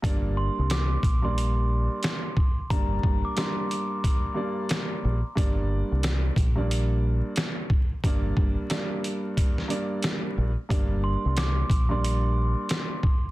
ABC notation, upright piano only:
X:1
M:4/4
L:1/16
Q:"Swing 16ths" 1/4=90
K:Gm
V:1 name="Upright piano"
[G,,G,B,Dd]6 z [G,,G,B,Dd]6 z3 | [G,,G,B,Dd]4 [G,,G,B,Dd]6 [G,,G,B,Dd]4- [G,,G,B,Dd] z | [G,,G,B,Dd]6 z [G,,G,B,Dd]6 z3 | [G,,G,B,Dd]4 [G,,G,B,Dd]6 [G,,G,B,Dd]4- [G,,G,B,Dd] z |
[G,,G,B,Dd]6 z [G,,G,B,Dd]6 z3 |]